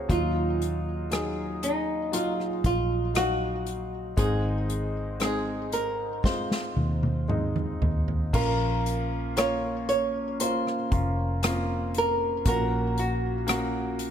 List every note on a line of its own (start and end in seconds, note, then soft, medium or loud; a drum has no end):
0.00 0.12 A#3 medium
0.00 0.11 C#4 medium
0.00 0.10 F4 soft
0.00 0.12 F#4 medium
0.00 0.33 G#4 soft
0.00 0.11 A#4 medium
0.00 0.11 C5 medium
0.00 0.33 C#5 soft
0.09 2.60 D#2 medium
0.09 1.58 A#2 soft
0.09 1.06 F#3 medium
0.09 1.06 D#4 medium
0.09 1.07 F4 medium
0.09 1.68 F4 medium
0.09 kick medium
0.09 closed hi-hat medium
0.62 closed hi-hat soft
1.11 2.08 F#3 medium
1.11 2.08 D#4 medium
1.11 2.09 G#4 medium
1.11 cross-stick medium
1.11 closed hi-hat medium
1.63 2.15 D#4 medium
1.63 closed hi-hat medium
2.12 3.10 F#3 medium
2.12 3.10 D#4 medium
2.12 3.10 F4 medium
2.12 2.65 F4 medium
2.12 closed hi-hat medium
2.40 cross-stick soft
2.64 4.14 A#1 medium
2.64 3.16 F4 medium
2.64 kick medium
2.64 closed hi-hat soft
3.14 4.12 F#3 medium
3.14 4.13 D#4 medium
3.14 4.15 F#4 medium
3.14 4.13 F5 medium
3.14 cross-stick medium
3.14 closed hi-hat medium
3.66 closed hi-hat medium
4.17 6.73 G#1 medium
4.17 5.68 G#2 medium
4.17 5.68 D#3 medium
4.17 5.15 G#3 medium
4.17 5.16 C4 medium
4.17 5.16 D#4 medium
4.17 5.21 G#4 medium
4.17 kick medium
4.17 closed hi-hat medium
4.70 closed hi-hat soft
5.20 6.19 G#3 medium
5.20 6.19 C4 medium
5.20 6.20 D#4 medium
5.20 5.70 G#4 medium
5.20 cross-stick medium
5.20 closed hi-hat medium
5.72 6.25 A#4 medium
5.72 closed hi-hat medium
6.24 7.24 G#3 medium
6.24 7.24 C4 soft
6.24 7.25 F4 medium
6.24 7.79 C5 medium
6.24 kick medium
6.24 snare soft
6.51 snare soft
6.77 7.78 D#2 medium
6.77 high tom medium
7.03 high tom medium
7.28 8.28 G#3 medium
7.28 8.29 C4 soft
7.28 8.29 D#4 medium
7.28 mid tom medium
7.56 mid tom medium
7.82 8.31 D#2 medium
7.82 floor tom medium
8.08 floor tom medium
8.33 10.62 A#1 medium
8.33 9.85 A#2 medium
8.33 9.85 F3 medium
8.33 9.32 A#3 medium
8.33 9.32 C#4 medium
8.33 9.33 F4 medium
8.33 9.37 A#4 medium
8.33 kick medium
8.33 crash medium
8.86 closed hi-hat medium
9.37 10.35 A#3 medium
9.37 10.35 C#4 medium
9.37 10.36 F4 medium
9.37 9.88 C#5 medium
9.37 cross-stick medium
9.37 closed hi-hat medium
9.89 10.40 C#5 medium
9.89 closed hi-hat medium
10.40 10.89 A#3 medium
10.40 10.90 C#4 medium
10.40 10.90 F4 medium
10.40 11.39 C5 medium
10.40 closed hi-hat medium
10.67 cross-stick soft
10.91 12.42 F1 medium
10.91 11.41 A#3 medium
10.91 11.41 C#4 soft
10.91 11.41 F4 medium
10.91 kick medium
10.91 closed hi-hat medium
11.43 12.41 A#3 medium
11.43 11.50 C4 soft
11.43 12.41 F4 medium
11.43 cross-stick loud
11.43 closed hi-hat medium
11.50 12.44 C#4 medium
11.94 12.47 A#4 medium
11.94 closed hi-hat medium
12.45 14.11 A#1 medium
12.45 13.95 A#2 medium
12.45 13.43 A#3 medium
12.45 13.43 C#4 medium
12.45 13.44 F#4 medium
12.45 13.00 A#4 medium
12.45 kick loud
12.45 closed hi-hat medium
12.98 14.11 F#4 medium
12.98 closed hi-hat medium
13.47 14.11 A#3 medium
13.47 14.11 C#4 medium
13.47 14.11 F#4 medium
13.47 cross-stick medium
13.47 closed hi-hat medium
13.99 closed hi-hat medium